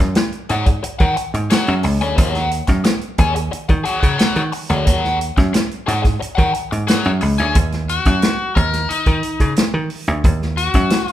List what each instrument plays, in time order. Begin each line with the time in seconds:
0.00 slap bass F#2, muted overdriven electric guitar stroke, snare
0.15 muted overdriven electric guitar stroke, snare, closed hi-hat
0.32 closed hi-hat
0.49 slap bass G#2, overdriven electric guitar G#4 C#5 F#5, closed hi-hat
0.66 muted overdriven electric guitar stroke, kick, closed hi-hat
0.83 muted overdriven electric guitar stroke, muted slap bass stroke, closed hi-hat
0.99 slap bass D#3, overdriven electric guitar G#4 C#5 F#5, kick, closed hi-hat
1.16 muted overdriven electric guitar stroke, closed hi-hat
1.34 slap bass G#2, muted overdriven electric guitar stroke, closed hi-hat
1.50 overdriven electric guitar G#4 C#5 F#5, snare, closed hi-hat
1.67 slap bass F#2, closed hi-hat
1.83 slap bass C#2, muted overdriven electric guitar stroke, open hi-hat
2.01 slap bass D2, overdriven electric guitar G#4 C#5 G#5, closed hi-hat
2.16 slap bass D#2, overdriven electric guitar G4 C5 F5, kick, closed hi-hat
2.29 overdriven electric guitar G#4 C#5 F#5
2.35 snare, closed hi-hat
2.51 closed hi-hat
2.67 slap bass F#2, muted overdriven electric guitar stroke, kick, snare, closed hi-hat
2.84 muted overdriven electric guitar stroke, snare, closed hi-hat
3.01 closed hi-hat
3.18 slap bass D#2, overdriven electric guitar G#4 C#5 G#5, kick, closed hi-hat
3.35 muted overdriven electric guitar stroke, closed hi-hat
3.51 muted overdriven electric guitar stroke, muted slap bass stroke, closed hi-hat
3.69 slap bass D#3, muted overdriven electric guitar stroke, kick, closed hi-hat
3.84 overdriven electric guitar G#4 C#5 F#5, closed hi-hat
4.00 slap bass C#3, overdriven electric guitar G#4 C#5 F#5, kick, closed hi-hat
4.18 overdriven electric guitar G#4 C#5 F#5, snare, closed hi-hat
4.36 slap bass D#3, closed hi-hat
4.52 muted overdriven electric guitar stroke, open hi-hat
4.70 slap bass D2, overdriven electric guitar G#4 C#5 F#5, closed hi-hat
4.85 slap bass D#2, overdriven electric guitar G#4 C#5 F#5, kick, closed hi-hat
5.05 snare
5.21 closed hi-hat
5.37 slap bass F#2, muted overdriven electric guitar stroke, kick, snare, closed hi-hat
5.53 muted overdriven electric guitar stroke, snare, closed hi-hat
5.71 closed hi-hat
5.86 slap bass G#2, overdriven electric guitar G#4 C#5 F#5, closed hi-hat
6.03 muted overdriven electric guitar stroke, kick, snare, closed hi-hat
6.19 muted overdriven electric guitar stroke, muted slap bass stroke, closed hi-hat
6.35 slap bass D#3, overdriven electric guitar G#4 C#5 F#5, kick, closed hi-hat
6.52 muted overdriven electric guitar stroke, closed hi-hat
6.71 slap bass G#2, muted overdriven electric guitar stroke, closed hi-hat
6.87 overdriven electric guitar G#4 C#5 F#5, snare, closed hi-hat
7.04 slap bass F#2, closed hi-hat
7.21 slap bass C#2, muted overdriven electric guitar stroke, open hi-hat
7.38 slap bass D2, overdriven electric guitar G#4 C#5 G#5, closed hi-hat
7.55 slap bass D#2, kick, closed hi-hat
7.72 snare, closed hi-hat
7.89 overdriven electric guitar F#4, closed hi-hat
8.05 slap bass F#2, kick, snare, closed hi-hat
8.22 snare, closed hi-hat
8.55 slap bass D#2, overdriven electric guitar A#4, kick, closed hi-hat
8.73 snare, closed hi-hat
8.89 overdriven electric guitar D#4, muted slap bass stroke, closed hi-hat
9.06 slap bass D#3, kick, closed hi-hat
9.23 closed hi-hat
9.40 slap bass C#3, kick, closed hi-hat
9.56 snare, closed hi-hat
9.74 slap bass D#3
9.90 open hi-hat
10.07 slap bass D2, closed hi-hat
10.24 slap bass D#2, kick, closed hi-hat
10.42 snare
10.57 overdriven electric guitar F#4, closed hi-hat
10.74 slap bass F#2, kick, snare, closed hi-hat
10.90 snare, closed hi-hat
11.06 overdriven electric guitar F4, closed hi-hat